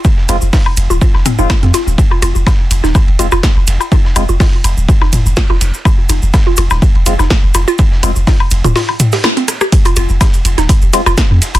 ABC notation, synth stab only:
X:1
M:4/4
L:1/16
Q:"Swing 16ths" 1/4=124
K:Fm
V:1 name="Synth stab"
z2 [A,CF] z8 [A,CF] z4 | z8 z2 [A,CF] z4 z | z2 [A,CF] z12 z | z8 z2 [A,CF] z4 z |
z2 [A,CF] z12 z | z8 z2 [A,CF] z4 z |]